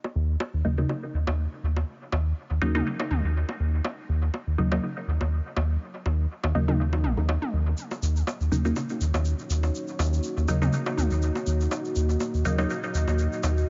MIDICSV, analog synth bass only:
0, 0, Header, 1, 2, 480
1, 0, Start_track
1, 0, Key_signature, -6, "minor"
1, 0, Tempo, 491803
1, 1832, Time_signature, 4, 2, 24, 8
1, 13361, End_track
2, 0, Start_track
2, 0, Title_t, "Analog synth bass"
2, 0, Program_c, 0, 38
2, 151, Note_on_c, 0, 39, 97
2, 352, Note_off_c, 0, 39, 0
2, 522, Note_on_c, 0, 39, 80
2, 612, Note_off_c, 0, 39, 0
2, 633, Note_on_c, 0, 39, 84
2, 833, Note_off_c, 0, 39, 0
2, 1112, Note_on_c, 0, 39, 82
2, 1219, Note_off_c, 0, 39, 0
2, 1241, Note_on_c, 0, 39, 76
2, 1435, Note_off_c, 0, 39, 0
2, 1592, Note_on_c, 0, 39, 90
2, 1792, Note_off_c, 0, 39, 0
2, 2072, Note_on_c, 0, 39, 97
2, 2272, Note_off_c, 0, 39, 0
2, 2442, Note_on_c, 0, 39, 76
2, 2532, Note_off_c, 0, 39, 0
2, 2552, Note_on_c, 0, 39, 83
2, 2752, Note_off_c, 0, 39, 0
2, 3031, Note_on_c, 0, 39, 83
2, 3138, Note_off_c, 0, 39, 0
2, 3163, Note_on_c, 0, 39, 79
2, 3355, Note_off_c, 0, 39, 0
2, 3512, Note_on_c, 0, 39, 92
2, 3713, Note_off_c, 0, 39, 0
2, 3992, Note_on_c, 0, 39, 100
2, 4192, Note_off_c, 0, 39, 0
2, 4361, Note_on_c, 0, 39, 81
2, 4452, Note_off_c, 0, 39, 0
2, 4472, Note_on_c, 0, 39, 84
2, 4672, Note_off_c, 0, 39, 0
2, 4952, Note_on_c, 0, 39, 84
2, 5059, Note_off_c, 0, 39, 0
2, 5082, Note_on_c, 0, 39, 78
2, 5275, Note_off_c, 0, 39, 0
2, 5432, Note_on_c, 0, 39, 88
2, 5632, Note_off_c, 0, 39, 0
2, 5911, Note_on_c, 0, 39, 100
2, 6112, Note_off_c, 0, 39, 0
2, 6281, Note_on_c, 0, 39, 79
2, 6372, Note_off_c, 0, 39, 0
2, 6391, Note_on_c, 0, 39, 84
2, 6871, Note_on_c, 0, 34, 86
2, 6886, Note_off_c, 0, 39, 0
2, 6978, Note_off_c, 0, 34, 0
2, 7001, Note_on_c, 0, 39, 89
2, 7195, Note_off_c, 0, 39, 0
2, 7351, Note_on_c, 0, 39, 83
2, 7552, Note_off_c, 0, 39, 0
2, 7831, Note_on_c, 0, 39, 103
2, 8032, Note_off_c, 0, 39, 0
2, 8201, Note_on_c, 0, 39, 81
2, 8292, Note_off_c, 0, 39, 0
2, 8311, Note_on_c, 0, 39, 85
2, 8512, Note_off_c, 0, 39, 0
2, 8791, Note_on_c, 0, 39, 87
2, 8898, Note_off_c, 0, 39, 0
2, 8920, Note_on_c, 0, 39, 82
2, 9114, Note_off_c, 0, 39, 0
2, 9271, Note_on_c, 0, 39, 87
2, 9472, Note_off_c, 0, 39, 0
2, 9751, Note_on_c, 0, 39, 101
2, 9952, Note_off_c, 0, 39, 0
2, 10121, Note_on_c, 0, 39, 80
2, 10212, Note_off_c, 0, 39, 0
2, 10232, Note_on_c, 0, 39, 82
2, 10432, Note_off_c, 0, 39, 0
2, 10712, Note_on_c, 0, 39, 86
2, 10819, Note_off_c, 0, 39, 0
2, 10842, Note_on_c, 0, 39, 79
2, 11035, Note_off_c, 0, 39, 0
2, 11192, Note_on_c, 0, 39, 93
2, 11392, Note_off_c, 0, 39, 0
2, 11672, Note_on_c, 0, 39, 100
2, 11872, Note_off_c, 0, 39, 0
2, 12043, Note_on_c, 0, 39, 81
2, 12132, Note_off_c, 0, 39, 0
2, 12152, Note_on_c, 0, 39, 83
2, 12352, Note_off_c, 0, 39, 0
2, 12632, Note_on_c, 0, 39, 86
2, 12739, Note_off_c, 0, 39, 0
2, 12763, Note_on_c, 0, 39, 83
2, 12955, Note_off_c, 0, 39, 0
2, 13111, Note_on_c, 0, 39, 90
2, 13312, Note_off_c, 0, 39, 0
2, 13361, End_track
0, 0, End_of_file